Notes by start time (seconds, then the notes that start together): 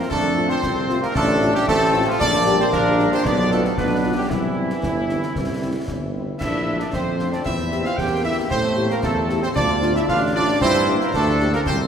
Already playing: C4
0.00 A#4
0.10 F2 A3 D4 A4, concert bass drum, snare
0.37 A3 C4 F4
0.49 C4 C5, snare
0.63 C2 C4, concert bass drum, snare
0.89 A3 C4 F4, snare
1.02 A#3 A#4, snare
1.15 A1 A3 D4 A4, concert bass drum, snare
1.42 A3 C4 F4, snare
1.54 G3 G4, snare
1.67 A1 A3 C4 A4, concert bass drum, snare
1.94 A3 C4 F4
2.07 F3 F4
2.20 A#1 A#3 D4 D5, concert bass drum, snare, crash
2.47 G3 D4 G4
2.59 C4 C5, snare
2.72 A#1 A#3 D4 A#4, concert bass drum, snare
2.99 G3 D4 G4, snare
3.12 C4 C5, snare
3.24 B1 B3 D4 D5, concert bass drum, snare
3.51 G3 A3 D4 F4 A4, snare
3.65 snare
3.77 B1 B3 D4 B4, concert bass drum, snare
4.04 G3 D4 F4
4.17 G3 G4
4.29 C2 E3 E4, concert bass drum, snare
4.57 G3 C4 E4
4.70 snare
4.83 G1, concert bass drum, snare
5.09 G3 C4 E4, snare
5.23 snare
5.35 C2, concert bass drum, snare
5.62 G3 C4 E4
5.88 G1, concert bass drum, snare
6.15 G3 C4 E4
6.40 A#1 D4 E4 E5, concert bass drum, snare, crash
6.67 A3 D4 F4
6.79 D4 D5, snare
6.93 F2 C4 C5, concert bass drum, snare
7.19 A3 D4 F4, snare
7.32 D4 D5, snare
7.45 E2 E4 E5, concert bass drum, snare
7.72 A#3 E4 G4, snare
7.85 F4 F5, snare
7.97 E2 A#3 G4 G5, concert bass drum, snare
8.24 A#3 E4 G4 E5
8.50 A2 A3 C4 C5, concert bass drum, snare
8.77 A3 E4 G4
8.90 A#3 A#4, snare
9.03 E2 A3 C4 A4, concert bass drum, snare
9.29 A3 E4 G4, snare
9.43 C4 C5, snare
9.55 D2 D4 F4 D5, concert bass drum, snare
9.82 A3 D4 F4, snare
9.95 E4 E5, snare
10.08 A1 D4 F4 F5, concert bass drum, snare
10.35 A3 D4 F4 D5
10.61 G2 C4 E4 C5, concert bass drum, snare, crash
10.87 A#3 D4 G4
11.01 A#3 A#4, snare
11.13 D2 A3 D4 A4, concert bass drum, snare
11.40 A#3 D4 G4, snare
11.53 A#3 A#4, snare
11.66 C2 C4 C5, concert bass drum, snare